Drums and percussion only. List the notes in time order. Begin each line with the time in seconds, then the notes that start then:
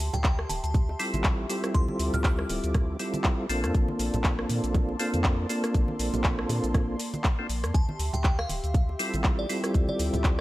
0.00 cabasa
0.13 closed hi-hat, high bongo, low conga, cabasa
0.24 kick, clap, closed hi-hat, cabasa
0.39 cross-stick
0.49 open hi-hat, high conga, cabasa
0.64 closed hi-hat, cabasa
0.74 kick, closed hi-hat, low conga, cabasa
0.89 high bongo
0.99 open hi-hat, cabasa
1.14 closed hi-hat, high conga, cabasa
1.24 kick, clap, closed hi-hat, cabasa
1.50 open hi-hat, cabasa
1.64 cross-stick, closed hi-hat, cabasa
1.74 kick, closed hi-hat, cabasa
1.88 high conga
1.99 open hi-hat, cabasa
2.13 closed hi-hat, high bongo, low conga, cabasa
2.24 kick, clap, closed hi-hat, cabasa
2.39 cross-stick
2.49 open hi-hat, high bongo, high conga, cabasa
2.64 closed hi-hat, cabasa
2.74 kick, cross-stick, closed hi-hat, low conga, cabasa
2.99 open hi-hat, cabasa
3.14 closed hi-hat, high conga, cabasa
3.24 kick, clap, closed hi-hat, cabasa
3.49 open hi-hat, cabasa
3.64 cross-stick, closed hi-hat, cabasa
3.74 kick, closed hi-hat, cabasa
3.88 high conga
3.99 open hi-hat, cabasa
4.14 closed hi-hat, high bongo, low conga, cabasa
4.24 kick, clap, closed hi-hat, cabasa
4.39 cross-stick
4.49 open hi-hat, high conga, cabasa
4.64 closed hi-hat, cabasa
4.74 kick, closed hi-hat, low conga, cabasa
4.89 high bongo
4.99 open hi-hat, cabasa
5.14 closed hi-hat, high conga, cabasa
5.24 kick, clap, closed hi-hat, cabasa
5.49 open hi-hat, cabasa
5.64 cross-stick, closed hi-hat, cabasa
5.74 kick, closed hi-hat, cabasa
5.88 high conga
5.99 open hi-hat, cabasa
6.13 closed hi-hat, high bongo, low conga, cabasa
6.24 kick, clap, closed hi-hat, cabasa
6.39 cross-stick
6.49 open hi-hat, high bongo, high conga, cabasa
6.64 closed hi-hat, cabasa
6.74 kick, cross-stick, closed hi-hat, low conga, cabasa
6.99 open hi-hat, cabasa
7.14 closed hi-hat, high conga, cabasa
7.24 kick, clap, closed hi-hat, cabasa
7.49 open hi-hat, cabasa
7.64 cross-stick, closed hi-hat, cabasa
7.74 kick, closed hi-hat, cabasa
7.89 high conga
7.99 open hi-hat, cabasa
8.13 closed hi-hat, high bongo, low conga, cabasa
8.24 kick, clap, closed hi-hat, cabasa
8.39 cross-stick
8.49 open hi-hat, high conga, cabasa
8.64 closed hi-hat, cabasa
8.74 kick, closed hi-hat, low conga, cabasa
8.89 high bongo
8.99 open hi-hat, cabasa
9.14 closed hi-hat, high conga, cabasa
9.24 kick, clap, closed hi-hat, cabasa
9.49 open hi-hat, cabasa
9.64 cross-stick, closed hi-hat, cabasa
9.74 kick, closed hi-hat, cabasa
9.88 high conga
9.99 open hi-hat, cabasa
10.13 closed hi-hat, high bongo, low conga, cabasa
10.24 kick, clap, closed hi-hat, cabasa